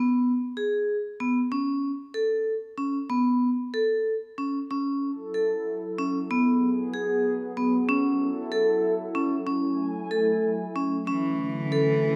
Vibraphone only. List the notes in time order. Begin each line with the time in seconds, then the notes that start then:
Already playing: B3
0.57 G#4
1.20 B3
1.52 C#4
2.14 A4
2.78 C#4
3.10 B3
3.74 A4
4.38 C#4
4.71 C#4
5.34 A4
5.98 C#4
6.31 B3
6.94 G#4
7.57 B3
7.89 C#4
8.52 A4
9.15 C#4
9.47 C#4
10.11 A4
10.76 C#4
11.07 C#4
11.72 A4